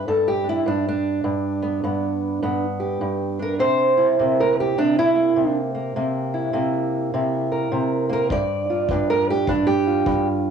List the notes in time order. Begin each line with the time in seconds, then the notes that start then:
0.08 G2 A4
0.28 G4
0.44 D4
0.49 E4
0.66 G2 D4
0.88 D4
1.24 G2
1.62 B3
1.84 G2 B3
2.43 G2 B3
2.80 G4
3.01 G2
3.39 D4 A#4
3.59 C3 C5
3.97 E4
4.19 C3 A#3
4.40 A#4
4.60 G4
4.78 C3 D4
4.99 E4
5.15 A#3
5.36 C3
5.75 A#3
5.96 C3 A#3
6.34 E4
6.53 C3 A#3
7.14 C3 E4
7.52 A#4
7.72 C3
8.10 A#3 A#4
8.30 G2 D5, kick
8.70 F4
8.89 G2 D4, kick
9.10 A#4
9.30 G4
9.47 G2 D4, kick
9.67 G4
9.87 F4
10.06 G2, kick